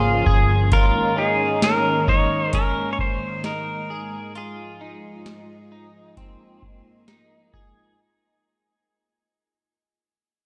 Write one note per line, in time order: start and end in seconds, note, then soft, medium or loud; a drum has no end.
0.00 0.22 G#1 medium
0.00 0.68 C#3 medium
0.00 0.68 F3 medium
0.00 0.70 A#3 medium
0.00 0.26 F4 medium
0.00 0.68 G#4 medium
0.26 0.69 G1 medium
0.26 0.72 G#4 medium
0.26 kick medium
0.71 7.95 G#2 medium
0.71 4.31 D#3 medium
0.71 4.31 A#3 medium
0.71 2.51 C#4 medium
0.71 1.17 F4 medium
0.71 1.18 A#4 medium
0.71 kick loud
0.71 closed hi-hat medium
1.18 2.07 D#4 medium
1.18 1.63 G#4 medium
1.62 2.10 A#4 medium
1.62 snare medium
1.62 closed hi-hat medium
2.08 2.53 D#4 medium
2.08 2.54 C#5 medium
2.08 kick medium
2.53 3.44 C#4 medium
2.53 4.33 D#4 medium
2.53 2.92 A#4 medium
2.53 kick medium
2.53 closed hi-hat medium
2.93 2.99 C#5 medium
2.99 3.45 C5 medium
2.99 kick medium
3.44 3.90 D#4 medium
3.44 4.39 A#4 medium
3.44 snare medium
3.44 closed hi-hat medium
3.90 4.35 G#4 medium
4.34 7.95 F3 medium
4.34 6.15 G#3 medium
4.34 4.81 F4 medium
4.34 7.51 G#4 medium
4.34 closed hi-hat medium
4.81 5.71 D#4 medium
5.26 snare medium
5.26 closed hi-hat medium
5.72 6.17 D#4 medium
6.16 7.97 A#3 medium
6.16 7.07 C4 medium
6.16 kick medium
6.16 closed hi-hat medium
6.62 kick medium
7.08 7.53 D#4 medium
7.08 snare medium
7.08 closed hi-hat medium
7.53 7.99 G#4 medium
7.53 kick medium